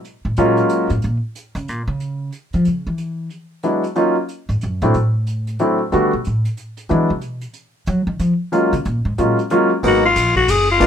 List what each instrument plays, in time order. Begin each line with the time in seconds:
0.04 closed hi-hat
0.25 upright bass A2
0.37 upright bass A#2, grand piano F#3 G#3 A#3 C#4 F4, closed hi-hat
0.57 closed hi-hat
0.69 closed hi-hat
0.89 upright bass A2, closed hi-hat
1.02 upright bass A#2, closed hi-hat
1.35 closed hi-hat
1.55 upright bass C#3, closed hi-hat
1.68 upright bass A#2, closed hi-hat
1.88 upright bass C#3
2.00 closed hi-hat
2.32 closed hi-hat
2.53 upright bass F3, closed hi-hat
2.65 upright bass C#3, closed hi-hat
2.87 upright bass E3
2.98 closed hi-hat
3.30 closed hi-hat
3.63 grand piano F#3 G#3 B3 D4 E4, closed hi-hat
3.84 closed hi-hat
3.95 grand piano F#3 A#3 C#4 D#4 F4, closed hi-hat
4.28 closed hi-hat
4.49 upright bass G#2, closed hi-hat
4.61 upright bass F#2, closed hi-hat
4.81 upright bass A#2, grand piano F#3 A3 C4 D4 E4, closed hi-hat
4.94 upright bass A2, closed hi-hat
5.27 closed hi-hat
5.47 closed hi-hat
5.59 grand piano F#3 A3 C4 D4 E4, closed hi-hat
5.92 upright bass D3, grand piano G3 A3 B3 D4 F#4, closed hi-hat
6.13 upright bass B2
6.24 upright bass A2, closed hi-hat
6.45 closed hi-hat
6.57 closed hi-hat
6.77 closed hi-hat
6.89 upright bass E3, grand piano F#3 G#3 B3 D4 E4, closed hi-hat
7.10 upright bass C#3
7.21 upright bass B2, closed hi-hat
7.41 closed hi-hat
7.53 closed hi-hat
7.86 upright bass F#3, closed hi-hat
8.07 upright bass D#3
8.19 upright bass F3, closed hi-hat
8.52 grand piano F#3 G#3 A#3 C#4 F4, closed hi-hat
8.73 upright bass C#3, closed hi-hat
8.85 upright bass A#2, closed hi-hat
9.05 upright bass G#2
9.18 upright bass A#2, grand piano F#3 G#3 A#3 C#4 F4, closed hi-hat
9.38 closed hi-hat
9.50 grand piano F#3 G#3 A#3 C#4 F4, closed hi-hat
9.83 upright bass G#1, grand piano F#3 G#3 A#3 B3 D#4, alto saxophone F#4, kick, ride
10.05 alto saxophone F4
10.16 upright bass A#1, kick, hi-hat pedal, ride
10.36 alto saxophone F#4, kick, ride
10.48 upright bass F#1, alto saxophone G#4, kick, hi-hat pedal, ride
10.71 alto saxophone F4
10.80 upright bass A#1, grand piano G#3 A#3 B3 D4 F4, kick, ride